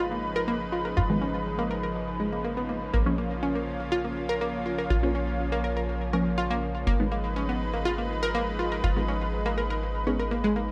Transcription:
Already playing: G#1 C#3 F3 G#3 D#4 B4
0.11 A#3
0.36 A#4
0.48 A#3
0.72 F4
0.85 A#4
0.97 G#1 F4
1.10 D#3 G#3 B3
1.21 C#4
1.59 A#3
1.71 A#4
1.83 A#4
2.20 G#3
2.32 A#3
2.44 A#3
2.57 B3
2.69 A#3
2.94 A#1 A#3 C#4 F4
3.06 F3 A#3 C#4
3.18 A#3
3.43 C#4
3.55 A#3
3.80 A#3
3.92 F4
4.05 A#3
4.29 A#4
4.41 A#3
4.66 F4
4.78 A#4
4.90 A#1 F4
5.03 F3 A#3 C#4
5.15 C#4
5.52 A#3
5.64 A#4
5.77 A#4
6.13 F3 A#3 C#4 A#4
6.38 F4
6.51 A#3
6.87 G#1 G#3 A#3 D#4 B4
7.00 D#3 G#3 B3
7.12 A#3
7.36 C#4
7.49 B3
7.73 A#3
7.85 F4
7.98 A#3
8.23 A#4
8.35 A#3
8.59 F4
8.72 A#4
8.84 G#1 F4
8.96 D#3 G#3 B3
9.08 C#4
9.46 A#3
9.58 A#4
9.70 A#4
10.07 D#3 G#3 B3 C#4
10.20 A#4
10.31 A#3
10.44 G#3
10.56 A#3

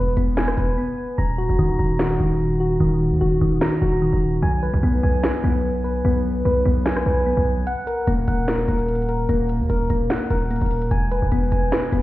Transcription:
Already playing: E1 B3 B4
0.17 E1 B3, closed hi-hat
0.37 G#5, snare, closed hi-hat
0.48 cross-stick
0.57 E1 B4, closed hi-hat
0.78 B3
1.18 D#1 A#5
1.38 F#4
1.49 D#1
1.59 D#1 D#3
1.79 D#1 A#5
1.99 F#4, snare
2.19 D#1 D#3
2.60 F#4
2.80 D#1 D#3
3.11 D#2
3.21 D#1 F#4
3.41 D#1 D#3
3.61 A#5, snare
3.82 D#1 F#4
4.02 D#3
4.13 D#1
4.42 B1 G#5
4.63 B4
4.74 B1
4.83 B1 B3
5.03 B1 G#5
5.24 B4, snare
5.44 B1 B3
5.84 B4
6.05 B1 B3
6.45 B1 B4
6.65 B1 B3
6.86 G#5, snare
6.97 cross-stick
7.06 B1 B4
7.26 B3
7.37 B1
7.67 F#5, closed hi-hat
7.87 A#4, closed hi-hat
8.07 D#1 A#3, closed hi-hat
8.28 D#1 F#5, closed hi-hat
8.48 A#4, snare, closed hi-hat
8.68 D#1 A#3, closed hi-hat
8.79 closed hi-hat
8.88 closed hi-hat
8.95 closed hi-hat
9.02 closed hi-hat
9.09 A#4, closed hi-hat
9.29 D#1 A#3, closed hi-hat
9.49 closed hi-hat
9.60 D#2
9.70 D#1 A#4, closed hi-hat
9.90 D#1 A#3, closed hi-hat
10.10 F#5, snare, closed hi-hat
10.30 D#1 A#4, closed hi-hat
10.51 A#3, closed hi-hat
10.56 closed hi-hat
10.61 D#1, closed hi-hat
10.66 closed hi-hat
10.71 closed hi-hat, open hi-hat
10.82 closed hi-hat
10.91 E1 G#5, closed hi-hat
11.11 B4, closed hi-hat
11.22 E1
11.32 E1 B3, closed hi-hat
11.52 E1 G#5, closed hi-hat
11.72 B4, snare, closed hi-hat
11.92 E1 B3, closed hi-hat

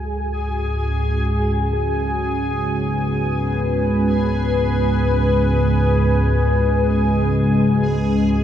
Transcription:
Already playing: C#2 G#2 G#3 C#4 F#4 G#4 G#5
2.30 B4
8.31 C#5

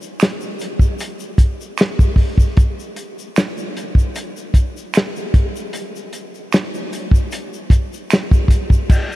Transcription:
0.02 shaker
0.20 finger snap, snare, closed hi-hat, shaker
0.41 shaker
0.59 closed hi-hat, shaker
0.79 kick, shaker
0.99 closed hi-hat, shaker
1.19 shaker
1.38 kick, closed hi-hat, shaker
1.61 shaker
1.78 finger snap, snare, closed hi-hat, shaker
1.99 kick, shaker
2.16 kick, open hi-hat
2.38 kick, shaker
2.57 kick, closed hi-hat, shaker
2.79 shaker
2.96 closed hi-hat, shaker
3.19 shaker
3.36 finger snap, snare, closed hi-hat, shaker
3.58 shaker
3.77 closed hi-hat, shaker
3.95 kick, shaker
4.15 closed hi-hat, shaker
4.37 shaker
4.54 kick, closed hi-hat, shaker
4.77 shaker
4.94 finger snap, snare, closed hi-hat, shaker
5.16 shaker
5.34 kick, closed hi-hat
5.56 shaker
5.73 closed hi-hat, shaker
5.96 shaker
6.13 closed hi-hat, shaker
6.34 shaker
6.53 finger snap, snare, closed hi-hat, shaker
6.74 shaker
6.93 closed hi-hat, shaker
7.11 kick, shaker
7.32 closed hi-hat, shaker
7.53 shaker
7.70 kick, closed hi-hat, shaker
7.93 shaker
8.10 finger snap, snare, closed hi-hat, shaker
8.31 kick, shaker
8.48 kick, closed hi-hat, shaker
8.70 kick, shaker
8.89 kick, crash, shaker
9.12 shaker

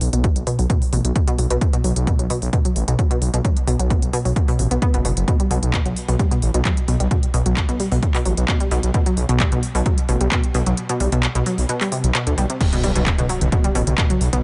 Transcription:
0.01 B1, open hi-hat
0.13 B1 B2, closed hi-hat
0.24 F#3, kick, closed hi-hat
0.36 B1, closed hi-hat
0.47 B2, open hi-hat
0.59 B1 F#3, open hi-hat
0.70 B2, kick, closed hi-hat
0.82 open hi-hat
0.93 A1 B2, open hi-hat
1.05 B1 F#3, closed hi-hat
1.16 kick, closed hi-hat
1.28 B2, closed hi-hat
1.39 B1 F#3, open hi-hat
1.50 B1 B2, closed hi-hat
1.61 kick, closed hi-hat
1.73 B2, closed hi-hat
1.84 B1 F#3, open hi-hat
1.96 B1, closed hi-hat
2.07 B2, kick, closed hi-hat
2.19 B1 F#3, closed hi-hat
2.30 B2, open hi-hat
2.42 B1, open hi-hat
2.53 B2, kick, closed hi-hat
2.65 F#3, closed hi-hat
2.76 A1, open hi-hat
2.88 B1 B2, closed hi-hat
2.99 F#3, kick, closed hi-hat
3.11 B2, closed hi-hat
3.22 B1, open hi-hat
3.34 B1 B2, closed hi-hat
3.45 F#3, kick, closed hi-hat
3.57 closed hi-hat
3.67 B1 B2, open hi-hat
3.79 B1 F#3, closed hi-hat
3.90 B2, kick, closed hi-hat
4.02 B1, closed hi-hat
4.13 B2, open hi-hat
4.25 B1 F#3, open hi-hat
4.36 kick, closed hi-hat
4.48 B2, open hi-hat
4.59 A1 B2, open hi-hat
4.71 B1 B3, closed hi-hat
4.82 B3, kick, closed hi-hat
4.94 F#1 B2, closed hi-hat
5.05 F#1 B2, open hi-hat
5.17 F#1, closed hi-hat
5.28 B2, kick, closed hi-hat
5.40 G3, closed hi-hat
5.51 B1 B2, open hi-hat
5.63 B1, closed hi-hat
5.74 B2, kick, clap, closed hi-hat
5.86 B1 F#3, closed hi-hat
5.97 open hi-hat
6.08 B1 B2, open hi-hat
6.19 G3, kick, closed hi-hat
6.31 B2, closed hi-hat
6.42 A1, open hi-hat
6.54 B1 B2, closed hi-hat
6.65 F#3, kick, clap, closed hi-hat
6.77 closed hi-hat
6.88 B1 B2, open hi-hat
7.00 B1 G3, closed hi-hat
7.11 B2, kick, closed hi-hat
7.23 closed hi-hat
7.34 B1 B2, open hi-hat
7.46 B1 F#3, closed hi-hat
7.57 kick, clap, closed hi-hat
7.69 B1 B2, closed hi-hat
7.80 G3, open hi-hat
7.92 B1 B2, open hi-hat
8.03 kick, closed hi-hat
8.15 B2, clap, open hi-hat
8.26 A1 F#3, open hi-hat
8.37 B1, closed hi-hat
8.48 B2, kick, clap, closed hi-hat
8.60 G3, closed hi-hat
8.71 B1 B2, open hi-hat
8.83 B1, closed hi-hat
8.94 B2, kick, closed hi-hat
9.06 F#3, closed hi-hat
9.17 B1, open hi-hat
9.29 B1 B2, closed hi-hat
9.40 G3, kick, clap, closed hi-hat
9.52 B1 B2, closed hi-hat
9.63 open hi-hat
9.75 B1 B2, open hi-hat
9.86 F#3, kick, closed hi-hat
9.98 closed hi-hat
10.09 A1 B2, open hi-hat
10.21 B1 G3, closed hi-hat
10.32 B2, kick, clap, closed hi-hat
10.44 closed hi-hat
10.54 B1 B2, open hi-hat
10.66 B1 F#3, closed hi-hat
10.77 closed hi-hat
10.89 B2, closed hi-hat
11.00 B1 G3, open hi-hat
11.12 B1 B2, closed hi-hat
11.23 clap, closed hi-hat
11.35 B1 B2, closed hi-hat
11.46 F#3, open hi-hat
11.58 B1, open hi-hat
11.69 B2, closed hi-hat
11.81 G3, clap, open hi-hat
11.92 C3, open hi-hat
12.04 B1, closed hi-hat
12.15 B2, clap, closed hi-hat
12.27 D2 D3, closed hi-hat
12.38 B1 G3, open hi-hat
12.50 C3, closed hi-hat
12.61 kick, closed hi-hat, crash, impact
12.73 B2, closed hi-hat, mid tom
12.83 B1 G3, open hi-hat
12.95 B1 B2, closed hi-hat, mid tom
13.06 kick, clap, closed hi-hat
13.18 B1 B2, closed hi-hat, mid tom
13.29 F#3, open hi-hat
13.41 B1, closed hi-hat, mid tom
13.52 B2, kick, closed hi-hat
13.64 G3, closed hi-hat, mid tom
13.75 A1 B2, open hi-hat
13.87 B1, closed hi-hat, mid tom
13.98 B2, kick, clap, closed hi-hat
14.10 F#3, closed hi-hat, mid tom
14.21 B1, open hi-hat
14.33 B1 B2, closed hi-hat, mid tom

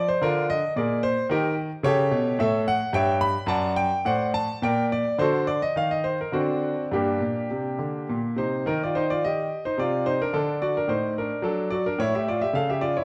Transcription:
0.09 C5
0.21 D3 D4 F4 A#4
0.50 D#5
0.76 A#2 G#4 A#4 D5
1.03 C5
1.29 D#3 D#4 G4 A#4
1.83 C#3 G4 A4 C#5
2.11 B2
2.39 A2 A4 C#5 E5
2.68 F#5
2.93 G2 C#5 E5 G5
3.21 B5
3.46 F#2 D5 F#5 A5
3.76 G5
4.05 A2 C5 D5 F#5
4.34 A5
4.62 A#2 A#4 D5 G5
4.92 D5
5.18 D3 F#4 A4 C5
5.47 D5
5.62 D#5
5.76 D#3 F5
5.91 D#5
6.04 C5
6.21 A#4
6.32 D3 C4 D4 F#4
6.91 G2 A#3 D4 G4
7.20 A#2
7.51 C3
7.79 D3
8.09 A#2
8.36 C3 D#4 C5
8.66 D#3 D#4 A#4
8.83 F4 D5
8.95 D#4 C5
9.10 F4 D5
9.25 G4 D#5
9.65 D#4 C5
9.78 C3 F4 D5
10.06 D#4 C5
10.22 D4 A#4
10.33 D3 D4 A4
10.62 F#4 D5
10.77 D4 A#4
10.88 A2 D#4 C5
11.18 D4 A#4
11.42 F#3 D4 A4
11.70 F#4 D5
11.86 D4 A#4
11.99 A2 E4 C#5
12.15 G4 E5
12.28 F4 D5
12.41 G4 E5
12.53 C#3 A4 F5
12.70 G4 E5
12.81 F4 D5
12.97 E4 C#5

